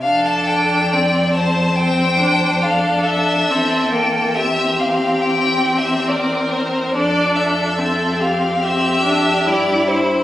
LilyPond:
<<
  \new Staff \with { instrumentName = "Violin" } { \time 4/4 \key f \major \tempo 4 = 70 f''16 a''16 g''4 a''8 g''4 f''8 e''8~ | e''8 g''8 e''8 f''8 \tuplet 3/2 { g''4 e''8 } d''8 c''8 | d''8 e''4 f''8 e''4 d''8 c''8 | }
  \new Staff \with { instrumentName = "Violin" } { \time 4/4 \key f \major a'4 d''8 c''8 c''4 a'4 | a'4 g'2 bes'4 | a'4 a'8 g'2~ g'8 | }
  \new Staff \with { instrumentName = "Viola" } { \time 4/4 \key f \major d'4 c'4 c'8 d'4. | c'8 bes8 c'2. | d'4 c'4 c'8 d'8 e'4 | }
  \new Staff \with { instrumentName = "Cello" } { \clef bass \time 4/4 \key f \major f,1 | e,1 | f,2. g,4 | }
>>